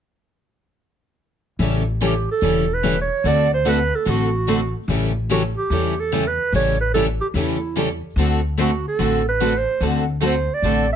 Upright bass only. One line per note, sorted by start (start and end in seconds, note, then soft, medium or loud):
1.59 2.25 A1 medium
2.42 3.08 E1 medium
3.24 3.90 D2 medium
4.06 4.72 A1 medium
4.88 5.54 A1 medium
5.70 6.36 E2 medium
6.52 7.18 A1 medium
7.34 8.00 E2 medium
8.16 8.82 D2 medium
8.99 9.64 A1 medium
9.80 10.46 D2 medium
10.62 10.96 A1 medium